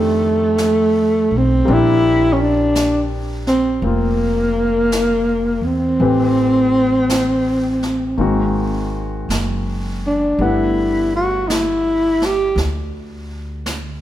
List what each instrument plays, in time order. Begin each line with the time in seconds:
Already playing: upright bass F2, grand piano D#3 A3 C4 D4 G4, tenor saxophone A3
0.58 brush sweep, snare, hi-hat pedal
1.31 upright bass B1
1.38 tenor saxophone C4
1.65 upright bass A#1, grand piano G3 A#3 C4 D4, brush sweep
1.70 tenor saxophone E4, grand piano G4
2.33 tenor saxophone C#4
2.41 tenor saxophone D4
2.75 brush sweep, snare, hi-hat pedal
3.47 tenor saxophone C4, snare
3.82 upright bass F1, grand piano A#3 C4, tenor saxophone A#3, brush sweep
3.86 grand piano F4
4.92 brush sweep, snare, hi-hat pedal
5.61 upright bass E2, tenor saxophone C4
6.00 upright bass A1, grand piano E3 A3 C4 G4 B4, brush sweep
7.09 brush sweep, snare, hi-hat pedal
7.82 snare
8.17 upright bass G#1, grand piano D#3 G#3 A#3 C4 F#4, brush sweep
9.29 upright bass F#1, brush sweep, snare, hi-hat pedal
10.07 tenor saxophone D4
10.39 upright bass G1, grand piano G3 A3 B3 D4 F#5, brush sweep
10.43 tenor saxophone E4
11.16 tenor saxophone F#4
11.48 tenor saxophone D#4, brush sweep, snare, hi-hat pedal
11.53 tenor saxophone E4
12.22 tenor saxophone G4, snare
12.56 upright bass D2, brush sweep, snare
13.66 brush sweep, snare, hi-hat pedal